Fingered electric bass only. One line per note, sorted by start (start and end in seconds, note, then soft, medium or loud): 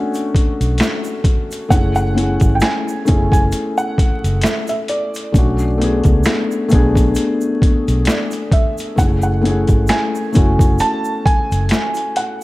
0.61 0.79 B1 loud
1.71 2.38 F#1 medium
2.42 2.61 G#1 medium
3.09 3.51 F#1 medium
4.24 4.43 F#1 medium
5.35 6.01 B1 medium
6.05 6.24 C#2 medium
6.73 7.15 B1 medium
7.88 8.07 B1 medium
8.99 9.65 F#1 loud
9.69 9.88 G#1 medium
10.37 10.79 F#1 medium
11.52 11.70 F#1 medium